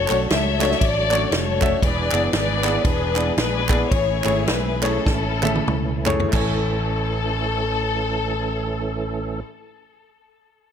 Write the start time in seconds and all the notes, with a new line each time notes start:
Already playing: F#3 A3 D4 F#4 A4 C#5
0.08 B1 A3 C#4 D4 F#4 C#5, clap, ride
0.30 C#2 A4 C#5 E5, snare, ride
0.60 A3 C#4 D4 F#4 C#5, snare, clap, ride
0.71 snare
0.81 A1 A4 D5, kick, ride
1.10 A3 C#4 D4 F#4 C#5, clap, ride
1.31 F1 A4 C#5, snare, ride
1.61 A3 C#4 D4 F#4 E5, kick, clap, ride
1.83 E1 E3 G#3 B3 D4 G#4 B4 D5, kick, ride
2.12 F#1 B3 D4 E4 G#4 D5, clap, ride
2.33 G#1 G#4 B4 D5, snare, ride
2.63 B3 D4 E4 G#4 D5, snare, clap, ride
2.84 E1 D4 G#4 B4, kick, ride
3.15 B3 D4 E4 G#4 D5, clap, ride
3.37 A#1 D4 G#4 B4, snare, ride
3.69 B3 D4 E4 G#4 D5, kick, clap, ride
3.91 A1 E3 A3 C#4 E4 F#4 G#4 C#5, kick, ride
3.98 E4
4.24 G#1 A3 C#4 E4 G#4 C#5, clap, ride
4.47 B1 B4, snare, ride
4.82 A3 C#4 E4 G#4 A4 C#5, clap, ride
5.06 A1, kick, snare
5.42 A3 C#4 E4 G#4 E5, clap, high tom
5.55 high tom
5.68 C#2, mid tom
6.05 A3 C#4 E4 G#4 C#5, clap, floor tom
6.20 floor tom
6.29 A1 A3 E4 A4
6.33 A1 E3 A3 C#4 A4 C#5 G#5, kick, clap, crash